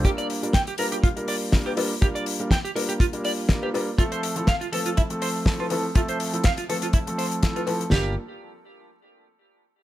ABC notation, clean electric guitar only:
X:1
M:4/4
L:1/16
Q:"Swing 16ths" 1/4=122
K:Gdor
V:1 name="Clean electric guitar"
G d z2 g G B G F z d z2 G z2 | G d z2 g G B G F z d z2 G z2 | F c z2 f F A F E z c z2 F z2 | F c z2 f F A F E z c z2 F z2 |
G2 z12 z2 |]